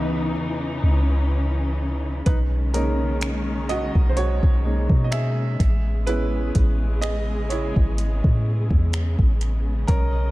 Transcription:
Already playing: C#2 C#3 E3 B3 D#4 G#4 B4
0.35 E2 C#4
0.83 C#2
2.26 B1 D#3 G#3 C#4 D#4 B4, kick, closed hi-hat
2.74 G#3 A#3 C#4 D#4 A#4, closed hi-hat
3.21 finger snap, closed hi-hat
3.69 F#4 D#5, closed hi-hat
3.95 B1, kick
4.09 C5
4.17 F#4 C#5, closed hi-hat
4.43 B1, kick
4.65 G#3 A#3 C#4 D#4
4.89 B2, kick
5.04 D#5
5.12 G#4 E5, finger snap, closed hi-hat
5.59 A1 C#3 G#3 B3 G#4, kick, closed hi-hat
6.07 G#3 B3 C#4 E4 B4, closed hi-hat
6.55 A1, kick, closed hi-hat
7.01 G#4 D#5, finger snap, closed hi-hat
7.50 E4 C#5, closed hi-hat
7.76 G#1, kick
7.98 closed hi-hat
8.24 A2, kick
8.71 E2, kick
8.93 finger snap, closed hi-hat
9.19 A1, kick
9.41 closed hi-hat
9.87 B1 G#3 C#4 A#4 D#5, kick, closed hi-hat

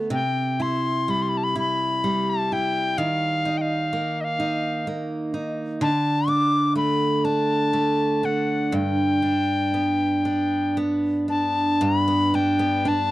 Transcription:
Already playing: A3 B3
0.10 C3 G5
0.60 E4 C6
1.08 G3 B5
1.22 C6
1.29 B5
1.37 A5
1.44 B5
1.56 E4 B5
2.04 G3
2.30 A5
2.52 E4 G5
2.98 D#3 F5
3.45 D#4
3.58 F5 G5
3.93 A#3
4.21 D#5 F5
4.40 D#4
4.87 A#3
5.34 D#4
5.81 D3 A5
6.28 D4 D6
6.75 A3 B5
7.25 D4 A5
7.73 A3
8.23 D4 F#5
8.72 G2 G5
9.22 D4
9.74 B3
10.25 D4
10.77 B3
11.28 D4 A5
11.81 G2 B5
12.08 B3
12.34 D4 G5
12.59 B3
12.85 D4 A5

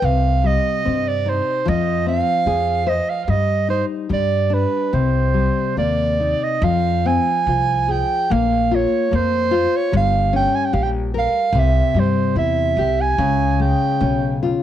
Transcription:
0.02 C2 C3 F5
0.44 G3 D#5
0.85 G2 C4
1.08 D5
1.26 D#4 C5
1.65 F2 F3 D#5
2.06 C4 F5
2.46 F2 G#4
2.87 C5 D#5
3.09 F5
3.24 G2 G3 F5
3.30 D#5
3.68 D#4 C5
4.09 G2 G3 D5
4.50 D4
4.54 B4
4.93 C2 C3 C5
5.34 G3
5.77 D#2 A#3 D5
6.20 D#4
6.43 D#5
6.62 F2 F3 F5
7.06 C4 G#5
7.47 C2 F4
7.88 G#4 G5
8.30 A#1 A#3 F5
8.71 F4 C#5
9.11 F2 A#3
9.15 C5
9.51 F4
9.76 C#5
9.92 G1 G3
9.96 F5
10.33 C#4 G5
10.55 G#5
10.65 G5
10.73 A#1 G4 F5
10.83 G5
11.14 A#4
11.18 F5
11.53 C2 C3
11.58 E5
11.94 G2 G3
11.99 C5
12.35 E2 E4 E5
12.77 C2 G4
13.01 G#5
13.18 C#2 C#3
13.60 G#3 G5
14.01 B1 C#4
14.43 F4

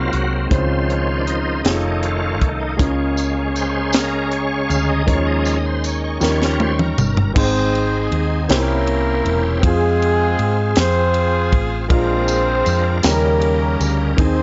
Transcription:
Already playing: C3 F#3 G#3 A#3 C4 D#4 F4 F#4 C5 D#5 C6
0.13 C2 F#4, closed hi-hat
0.32 C4
0.49 C#2 C#3 D#3 F3 G#3 C4 C#4 E4 C5 F5 C6, kick, closed hi-hat
0.58 F4
0.82 C4
0.89 C#4, closed hi-hat
1.19 D4
1.26 D#4, closed hi-hat
1.64 F1 D#3 A3 C#4 D#4 F4 G#4 D#5, snare, closed hi-hat
1.74 A4
2.03 F4, closed hi-hat
2.41 C2 C#4, kick, closed hi-hat
2.60 D#4
2.77 C#2 C#3 G#3 A#3 C#4 G#5 A#5, kick, closed hi-hat
2.81 F4 A#4
3.17 closed hi-hat, tambourine
3.56 C5, closed hi-hat, tambourine
3.93 A#4, snare, closed hi-hat, tambourine
4.31 C#5, closed hi-hat
4.69 D2 F5, closed hi-hat, tambourine
4.89 D#5
5.06 D#2 D#3 F3 G#3 A#3 C#4 D#4 A#4 C#5 D#5, kick, closed hi-hat
5.27 D#5
5.45 D#5, closed hi-hat, tambourine
5.66 C5
5.84 C#5, closed hi-hat, tambourine
6.04 C#5
6.20 D#2 D#3 F3 G3 A#3 C#4 D#4 A#4 G5 C#6, snare, tambourine
6.42 A#4, snare
6.60 C5, high tom
6.79 A#4, mid tom
6.98 G1, mid tom, tambourine
7.17 floor tom
7.34 G#1 G#2 C4 D#4 G#4 C5, kick, crash
7.38 D#4 G#4
7.75 ride
8.11 D#2, ride
8.48 C2 C3 A#3 C#4 D#4 E4 G4 A#4 C5, snare, ride
8.56 E4
8.87 ride
9.25 E1, ride
9.61 F2 C4 F4 G#4, kick, ride
9.65 G#3 C4 F4 G#4
10.02 ride
10.39 G#2, ride
10.76 F2 C4 F4 G#4 C5, snare, ride
11.14 ride
11.52 A1, kick, ride
11.88 A#1 A#2 G#3 A#3 D4 F4 A#4, kick, ride
11.93 C4 F4 G#4 C5
12.28 ride, tambourine
12.66 F2, ride, tambourine
13.03 D#2 C#3 G3 A#3 C#4 D#4 A4 A#4, snare, ride, tambourine
13.07 C#4 G4
13.12 A#4
13.41 ride
13.80 D2 A#3 A#4, ride, tambourine
14.17 D#2 D#3 C4 D#4 G#4, kick, ride
14.22 C4 D#4 G#4 C5

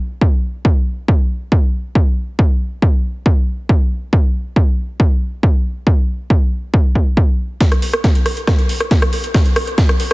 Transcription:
0.21 kick
0.65 kick
1.08 kick
1.52 kick
1.95 kick
2.39 kick
2.82 kick
3.26 kick
3.69 kick
4.13 kick
4.56 kick
5.00 kick
5.43 kick
5.87 kick
6.30 kick
6.74 kick
6.95 kick
7.17 kick
7.61 kick, snare, closed hi-hat
7.72 cross-stick, closed hi-hat
7.82 open hi-hat
7.93 cross-stick, closed hi-hat
8.04 kick, snare, closed hi-hat
8.15 closed hi-hat
8.26 cross-stick, open hi-hat
8.37 closed hi-hat
8.47 kick, cross-stick, snare, closed hi-hat
8.59 closed hi-hat
8.69 open hi-hat
8.80 cross-stick, closed hi-hat
8.91 kick, snare, closed hi-hat
9.02 cross-stick, closed hi-hat
9.13 open hi-hat
9.24 closed hi-hat
9.34 kick, cross-stick, snare, closed hi-hat
9.46 closed hi-hat
9.56 cross-stick, open hi-hat
9.67 closed hi-hat
9.78 kick, snare, closed hi-hat
9.89 cross-stick, closed hi-hat
10.00 open hi-hat

